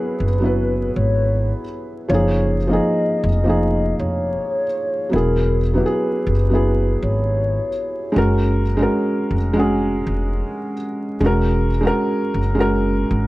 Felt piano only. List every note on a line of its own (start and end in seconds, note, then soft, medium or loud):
0.00 0.40 F#3 medium
0.00 0.42 B3 medium
0.00 0.44 E4 medium
0.00 2.11 F#4 medium
0.00 2.11 G#4 medium
0.40 1.59 F#3 medium
0.40 1.60 B3 medium
0.44 1.61 E4 medium
0.44 1.62 B4 medium
2.08 2.55 F3 medium
2.08 2.56 A#3 medium
2.08 2.57 D#4 medium
2.14 2.58 G#4 medium
2.67 3.24 F3 medium
2.67 3.25 A#3 medium
2.67 3.26 D#4 medium
2.73 3.27 G#4 medium
3.44 4.63 F3 medium
3.44 4.64 A#3 medium
3.44 4.65 D#4 medium
3.49 4.66 G#4 medium
5.09 5.58 F#3 medium
5.09 5.59 B3 medium
5.09 5.59 E4 medium
5.16 5.61 G#4 medium
5.74 6.30 F#3 medium
5.74 6.30 B3 medium
5.74 6.31 E4 medium
5.80 5.82 G4 medium
5.86 6.36 G#4 medium
6.49 7.68 F#3 medium
6.49 7.69 B3 medium
6.53 7.70 E4 medium
6.53 7.71 G#4 medium
8.12 8.61 G#3 medium
8.12 8.62 C#4 medium
8.12 8.63 F#4 medium
8.18 8.64 A#4 medium
8.77 9.33 G#3 medium
8.77 9.34 C#4 medium
8.77 9.35 F#4 medium
8.82 9.36 A#4 medium
9.53 10.72 G#3 medium
9.53 10.73 C#4 medium
9.53 10.74 F#4 medium
9.59 10.75 G#4 medium
11.20 11.67 G#3 medium
11.20 11.68 C#4 medium
11.20 11.69 F#4 medium
11.26 11.70 A#4 medium
11.81 12.37 G#3 medium
11.81 12.38 C#4 medium
11.81 12.39 F#4 medium
11.87 12.40 A#4 loud
12.55 13.27 G#3 medium
12.55 13.27 C#4 medium
12.55 13.27 F#4 medium
12.60 13.27 A#4 medium